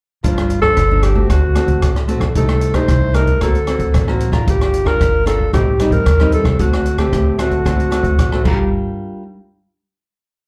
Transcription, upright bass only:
0, 0, Header, 1, 2, 480
1, 0, Start_track
1, 0, Key_signature, -2, "minor"
1, 0, Tempo, 530035
1, 217, Time_signature, 4, 2, 24, 8
1, 9484, End_track
2, 0, Start_track
2, 0, Title_t, "Upright bass"
2, 0, Program_c, 0, 32
2, 221, Note_on_c, 0, 31, 84
2, 627, Note_off_c, 0, 31, 0
2, 700, Note_on_c, 0, 31, 79
2, 1106, Note_off_c, 0, 31, 0
2, 1178, Note_on_c, 0, 38, 86
2, 1380, Note_off_c, 0, 38, 0
2, 1514, Note_on_c, 0, 38, 79
2, 1624, Note_off_c, 0, 38, 0
2, 1653, Note_on_c, 0, 33, 86
2, 1959, Note_off_c, 0, 33, 0
2, 1994, Note_on_c, 0, 33, 84
2, 2104, Note_off_c, 0, 33, 0
2, 2134, Note_on_c, 0, 36, 88
2, 2541, Note_off_c, 0, 36, 0
2, 2613, Note_on_c, 0, 36, 85
2, 3020, Note_off_c, 0, 36, 0
2, 3092, Note_on_c, 0, 38, 81
2, 3296, Note_off_c, 0, 38, 0
2, 3430, Note_on_c, 0, 38, 77
2, 3541, Note_off_c, 0, 38, 0
2, 3572, Note_on_c, 0, 33, 84
2, 3877, Note_off_c, 0, 33, 0
2, 3911, Note_on_c, 0, 33, 84
2, 4021, Note_off_c, 0, 33, 0
2, 4052, Note_on_c, 0, 31, 87
2, 4459, Note_off_c, 0, 31, 0
2, 4534, Note_on_c, 0, 31, 81
2, 4940, Note_off_c, 0, 31, 0
2, 5012, Note_on_c, 0, 33, 86
2, 5215, Note_off_c, 0, 33, 0
2, 5351, Note_on_c, 0, 33, 75
2, 5461, Note_off_c, 0, 33, 0
2, 5489, Note_on_c, 0, 39, 82
2, 5796, Note_off_c, 0, 39, 0
2, 5832, Note_on_c, 0, 36, 78
2, 5942, Note_off_c, 0, 36, 0
2, 5973, Note_on_c, 0, 38, 88
2, 6380, Note_off_c, 0, 38, 0
2, 6455, Note_on_c, 0, 38, 84
2, 6862, Note_off_c, 0, 38, 0
2, 6934, Note_on_c, 0, 38, 89
2, 7137, Note_off_c, 0, 38, 0
2, 7273, Note_on_c, 0, 38, 81
2, 7383, Note_off_c, 0, 38, 0
2, 7414, Note_on_c, 0, 33, 88
2, 7618, Note_off_c, 0, 33, 0
2, 7655, Note_on_c, 0, 31, 84
2, 7878, Note_off_c, 0, 31, 0
2, 9484, End_track
0, 0, End_of_file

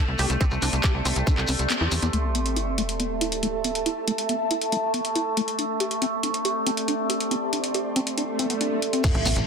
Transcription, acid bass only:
0, 0, Header, 1, 2, 480
1, 0, Start_track
1, 0, Key_signature, 0, "minor"
1, 0, Tempo, 431655
1, 451, Time_signature, 4, 2, 24, 8
1, 10530, End_track
2, 0, Start_track
2, 0, Title_t, "Acid bass"
2, 0, Program_c, 0, 38
2, 212, Note_on_c, 0, 67, 105
2, 324, Note_off_c, 0, 67, 0
2, 452, Note_on_c, 0, 60, 109
2, 497, Note_off_c, 0, 60, 0
2, 692, Note_on_c, 0, 62, 75
2, 767, Note_off_c, 0, 62, 0
2, 932, Note_on_c, 0, 67, 107
2, 1044, Note_off_c, 0, 67, 0
2, 1172, Note_on_c, 0, 60, 105
2, 1217, Note_off_c, 0, 60, 0
2, 1412, Note_on_c, 0, 62, 87
2, 1487, Note_off_c, 0, 62, 0
2, 1652, Note_on_c, 0, 60, 104
2, 1697, Note_off_c, 0, 60, 0
2, 1891, Note_on_c, 0, 59, 85
2, 1967, Note_off_c, 0, 59, 0
2, 2012, Note_on_c, 0, 64, 106
2, 2057, Note_off_c, 0, 64, 0
2, 2132, Note_on_c, 0, 60, 108
2, 2177, Note_off_c, 0, 60, 0
2, 2251, Note_on_c, 0, 59, 96
2, 2327, Note_off_c, 0, 59, 0
2, 2372, Note_on_c, 0, 57, 100
2, 2417, Note_off_c, 0, 57, 0
2, 2612, Note_on_c, 0, 59, 76
2, 2687, Note_off_c, 0, 59, 0
2, 2852, Note_on_c, 0, 64, 101
2, 2964, Note_off_c, 0, 64, 0
2, 3092, Note_on_c, 0, 57, 100
2, 3137, Note_off_c, 0, 57, 0
2, 3332, Note_on_c, 0, 59, 81
2, 3407, Note_off_c, 0, 59, 0
2, 3572, Note_on_c, 0, 64, 99
2, 3684, Note_off_c, 0, 64, 0
2, 3812, Note_on_c, 0, 57, 102
2, 3857, Note_off_c, 0, 57, 0
2, 4052, Note_on_c, 0, 59, 79
2, 4127, Note_off_c, 0, 59, 0
2, 4292, Note_on_c, 0, 64, 104
2, 4404, Note_off_c, 0, 64, 0
2, 4532, Note_on_c, 0, 57, 102
2, 4577, Note_off_c, 0, 57, 0
2, 4772, Note_on_c, 0, 59, 82
2, 4847, Note_off_c, 0, 59, 0
2, 5012, Note_on_c, 0, 64, 101
2, 5124, Note_off_c, 0, 64, 0
2, 5252, Note_on_c, 0, 57, 100
2, 5297, Note_off_c, 0, 57, 0
2, 5492, Note_on_c, 0, 59, 79
2, 5567, Note_off_c, 0, 59, 0
2, 5732, Note_on_c, 0, 64, 100
2, 5844, Note_off_c, 0, 64, 0
2, 5972, Note_on_c, 0, 57, 104
2, 6017, Note_off_c, 0, 57, 0
2, 6212, Note_on_c, 0, 62, 81
2, 6287, Note_off_c, 0, 62, 0
2, 6452, Note_on_c, 0, 67, 101
2, 6564, Note_off_c, 0, 67, 0
2, 6692, Note_on_c, 0, 60, 105
2, 6737, Note_off_c, 0, 60, 0
2, 6932, Note_on_c, 0, 62, 79
2, 7007, Note_off_c, 0, 62, 0
2, 7172, Note_on_c, 0, 67, 99
2, 7284, Note_off_c, 0, 67, 0
2, 7412, Note_on_c, 0, 60, 104
2, 7457, Note_off_c, 0, 60, 0
2, 7652, Note_on_c, 0, 62, 85
2, 7727, Note_off_c, 0, 62, 0
2, 7892, Note_on_c, 0, 67, 107
2, 8004, Note_off_c, 0, 67, 0
2, 8131, Note_on_c, 0, 60, 102
2, 8177, Note_off_c, 0, 60, 0
2, 8372, Note_on_c, 0, 62, 75
2, 8447, Note_off_c, 0, 62, 0
2, 8612, Note_on_c, 0, 67, 101
2, 8724, Note_off_c, 0, 67, 0
2, 8852, Note_on_c, 0, 60, 106
2, 8897, Note_off_c, 0, 60, 0
2, 9091, Note_on_c, 0, 62, 79
2, 9167, Note_off_c, 0, 62, 0
2, 9332, Note_on_c, 0, 60, 106
2, 9407, Note_off_c, 0, 60, 0
2, 9451, Note_on_c, 0, 59, 77
2, 9497, Note_off_c, 0, 59, 0
2, 9571, Note_on_c, 0, 62, 84
2, 9811, Note_on_c, 0, 60, 106
2, 9828, Note_off_c, 0, 62, 0
2, 9857, Note_off_c, 0, 60, 0
2, 9931, Note_on_c, 0, 60, 76
2, 10044, Note_off_c, 0, 60, 0
2, 10051, Note_on_c, 0, 57, 103
2, 10097, Note_off_c, 0, 57, 0
2, 10291, Note_on_c, 0, 59, 77
2, 10367, Note_off_c, 0, 59, 0
2, 10530, End_track
0, 0, End_of_file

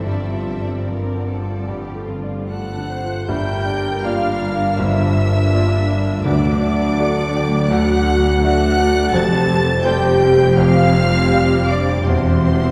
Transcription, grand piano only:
0, 0, Header, 1, 2, 480
1, 0, Start_track
1, 0, Tempo, 815217
1, 37, Time_signature, 4, 2, 24, 8
1, 1476, Tempo, 770218
1, 2436, Tempo, 733496
1, 4836, Tempo, 715990
1, 6756, Tempo, 748130
1, 8125, End_track
2, 0, Start_track
2, 0, Title_t, "Grand piano"
2, 0, Program_c, 0, 0
2, 0, Control_c, 0, 64, 127
2, 39, Note_on_c, 0, 43, 41
2, 50, Control_c, 0, 64, 0
2, 137, Control_c, 0, 64, 127
2, 199, Note_on_c, 0, 65, 33
2, 360, Note_on_c, 0, 74, 32
2, 454, Note_off_c, 0, 65, 0
2, 519, Note_on_c, 0, 53, 32
2, 614, Note_off_c, 0, 74, 0
2, 678, Note_on_c, 0, 50, 29
2, 772, Note_off_c, 0, 53, 0
2, 839, Note_on_c, 0, 65, 31
2, 930, Note_off_c, 0, 50, 0
2, 969, Note_off_c, 0, 43, 0
2, 990, Note_on_c, 0, 43, 35
2, 1090, Note_off_c, 0, 65, 0
2, 1151, Note_on_c, 0, 57, 32
2, 1315, Note_on_c, 0, 74, 28
2, 1413, Note_off_c, 0, 57, 0
2, 1485, Note_on_c, 0, 57, 26
2, 1577, Note_off_c, 0, 74, 0
2, 1640, Note_on_c, 0, 50, 27
2, 1747, Note_off_c, 0, 57, 0
2, 1805, Note_on_c, 0, 65, 31
2, 1902, Note_off_c, 0, 50, 0
2, 1942, Note_off_c, 0, 43, 0
2, 1960, Note_on_c, 0, 43, 59
2, 1963, Note_on_c, 0, 31, 48
2, 1966, Note_off_c, 0, 65, 0
2, 1980, Control_c, 0, 64, 0
2, 2087, Control_c, 0, 64, 127
2, 2430, Note_on_c, 0, 58, 47
2, 2435, Note_on_c, 0, 65, 48
2, 2436, Note_on_c, 0, 74, 53
2, 2893, Note_off_c, 0, 43, 0
2, 2894, Note_off_c, 0, 58, 0
2, 2895, Note_off_c, 0, 31, 0
2, 2896, Note_off_c, 0, 65, 0
2, 2897, Note_off_c, 0, 74, 0
2, 2923, Note_on_c, 0, 43, 51
2, 2927, Note_on_c, 0, 31, 56
2, 3409, Note_on_c, 0, 58, 44
2, 3409, Note_on_c, 0, 65, 45
2, 3411, Note_on_c, 0, 74, 45
2, 3854, Note_off_c, 0, 43, 0
2, 3855, Note_off_c, 0, 31, 0
2, 3857, Note_off_c, 0, 58, 0
2, 3857, Note_off_c, 0, 65, 0
2, 3857, Note_off_c, 0, 74, 0
2, 3881, Note_on_c, 0, 38, 59
2, 3881, Note_on_c, 0, 50, 50
2, 3891, Control_c, 0, 64, 0
2, 4011, Control_c, 0, 64, 127
2, 4364, Note_on_c, 0, 57, 52
2, 4366, Note_on_c, 0, 54, 50
2, 4368, Note_on_c, 0, 74, 57
2, 4812, Note_off_c, 0, 38, 0
2, 4812, Note_off_c, 0, 50, 0
2, 4813, Note_off_c, 0, 57, 0
2, 4814, Note_off_c, 0, 54, 0
2, 4815, Note_off_c, 0, 74, 0
2, 4833, Note_on_c, 0, 38, 68
2, 4833, Note_on_c, 0, 50, 68
2, 5323, Note_on_c, 0, 57, 52
2, 5327, Note_on_c, 0, 66, 55
2, 5328, Note_on_c, 0, 74, 54
2, 5763, Note_off_c, 0, 38, 0
2, 5763, Note_off_c, 0, 50, 0
2, 5766, Note_off_c, 0, 57, 0
2, 5769, Note_off_c, 0, 66, 0
2, 5769, Note_off_c, 0, 74, 0
2, 5789, Note_on_c, 0, 41, 71
2, 5790, Note_on_c, 0, 29, 61
2, 5803, Control_c, 0, 64, 0
2, 5908, Control_c, 0, 64, 127
2, 6267, Note_on_c, 0, 55, 62
2, 6269, Note_on_c, 0, 67, 65
2, 6270, Note_on_c, 0, 72, 65
2, 6728, Note_off_c, 0, 41, 0
2, 6729, Note_off_c, 0, 29, 0
2, 6729, Note_off_c, 0, 55, 0
2, 6730, Note_off_c, 0, 67, 0
2, 6731, Note_off_c, 0, 72, 0
2, 6753, Note_on_c, 0, 29, 78
2, 6755, Note_on_c, 0, 41, 71
2, 7228, Note_on_c, 0, 55, 50
2, 7233, Note_on_c, 0, 67, 48
2, 7235, Note_on_c, 0, 72, 52
2, 7686, Note_off_c, 0, 29, 0
2, 7687, Note_off_c, 0, 41, 0
2, 7687, Note_off_c, 0, 55, 0
2, 7689, Note_off_c, 0, 67, 0
2, 7690, Note_off_c, 0, 72, 0
2, 7712, Note_on_c, 0, 40, 68
2, 7715, Note_on_c, 0, 28, 55
2, 7725, Control_c, 0, 64, 0
2, 7814, Control_c, 0, 64, 127
2, 8125, Note_off_c, 0, 28, 0
2, 8125, Note_off_c, 0, 40, 0
2, 8125, End_track
0, 0, End_of_file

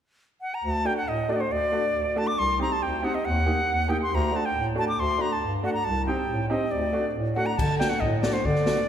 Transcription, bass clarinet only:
0, 0, Header, 1, 2, 480
1, 0, Start_track
1, 0, Tempo, 434153
1, 700, Time_signature, 2, 2, 24, 8
1, 9823, End_track
2, 0, Start_track
2, 0, Title_t, "Bass clarinet"
2, 0, Program_c, 0, 71
2, 706, Note_on_c, 0, 38, 101
2, 992, Note_off_c, 0, 38, 0
2, 1180, Note_on_c, 0, 45, 65
2, 1468, Note_off_c, 0, 45, 0
2, 1661, Note_on_c, 0, 38, 81
2, 1949, Note_off_c, 0, 38, 0
2, 2150, Note_on_c, 0, 38, 77
2, 2435, Note_off_c, 0, 38, 0
2, 2628, Note_on_c, 0, 36, 92
2, 2913, Note_off_c, 0, 36, 0
2, 3107, Note_on_c, 0, 38, 72
2, 3393, Note_off_c, 0, 38, 0
2, 3593, Note_on_c, 0, 39, 92
2, 3877, Note_off_c, 0, 39, 0
2, 4071, Note_on_c, 0, 39, 71
2, 4355, Note_off_c, 0, 39, 0
2, 4555, Note_on_c, 0, 38, 103
2, 4838, Note_off_c, 0, 38, 0
2, 5030, Note_on_c, 0, 45, 69
2, 5315, Note_off_c, 0, 45, 0
2, 5513, Note_on_c, 0, 38, 92
2, 5797, Note_off_c, 0, 38, 0
2, 5983, Note_on_c, 0, 43, 65
2, 6270, Note_off_c, 0, 43, 0
2, 6465, Note_on_c, 0, 36, 91
2, 6752, Note_off_c, 0, 36, 0
2, 6954, Note_on_c, 0, 45, 72
2, 7238, Note_off_c, 0, 45, 0
2, 7433, Note_on_c, 0, 38, 91
2, 7717, Note_off_c, 0, 38, 0
2, 7903, Note_on_c, 0, 45, 81
2, 8190, Note_off_c, 0, 45, 0
2, 8392, Note_on_c, 0, 50, 94
2, 8676, Note_off_c, 0, 50, 0
2, 8867, Note_on_c, 0, 45, 82
2, 9152, Note_off_c, 0, 45, 0
2, 9343, Note_on_c, 0, 50, 101
2, 9629, Note_off_c, 0, 50, 0
2, 9823, End_track
0, 0, End_of_file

